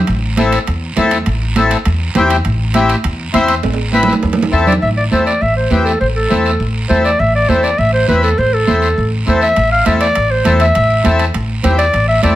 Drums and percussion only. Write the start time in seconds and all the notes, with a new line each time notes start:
0.07 high conga, high timbale, long guiro
0.37 high conga, high timbale, short guiro
0.52 high timbale, short guiro
0.67 high conga, high timbale, long guiro
0.96 high conga, high timbale, low timbale, short guiro
1.11 high timbale, short guiro
1.26 high conga, high timbale, long guiro
1.56 high conga, high timbale, short guiro
1.71 high timbale, short guiro
1.85 high conga, high timbale, long guiro
2.15 high conga, high timbale, low timbale, short guiro
2.30 high timbale, short guiro
2.45 high conga, high timbale, long guiro
2.74 high conga, high timbale, short guiro
2.89 high timbale, short guiro
3.04 high conga, high timbale, long guiro
3.34 high conga, high timbale, short guiro
3.48 high timbale, short guiro
3.63 high conga, high timbale, long guiro
3.73 high timbale
3.93 high conga, short guiro
4.03 low timbale
4.08 high conga, short guiro
4.13 low timbale
4.23 low timbale, long guiro
4.33 low timbale
4.38 high conga
4.43 low timbale
4.53 short guiro
4.67 low conga, short guiro
4.72 low timbale
4.82 long guiro
5.12 high conga, short guiro
5.26 short guiro
5.41 high conga, long guiro
5.71 high conga, short guiro
5.86 short guiro
6.01 high conga, long guiro
6.30 high conga, short guiro
6.45 short guiro
6.60 high conga, long guiro
6.90 high conga, short guiro
7.04 short guiro
7.19 high conga, long guiro
7.49 high conga, short guiro
7.63 short guiro
7.78 high conga, long guiro
8.08 high conga, short guiro
8.23 short guiro
8.38 high conga, long guiro
8.67 high conga, short guiro
8.82 short guiro
8.96 high conga, long guiro
9.27 high conga, short guiro
9.42 short guiro
9.56 high conga, high timbale, long guiro
9.86 high conga, high timbale, short guiro
10.01 high timbale, short guiro
10.15 high conga, high timbale, long guiro
10.45 high conga, high timbale, short guiro
10.60 high timbale, short guiro
10.75 high conga, high timbale, long guiro
11.04 high conga, high timbale, short guiro
11.19 high timbale, short guiro
11.34 high conga, high timbale, long guiro
11.63 high conga, high timbale, low timbale, short guiro
11.79 high timbale, short guiro
11.93 high conga, high timbale, long guiro
12.23 high conga, high timbale, short guiro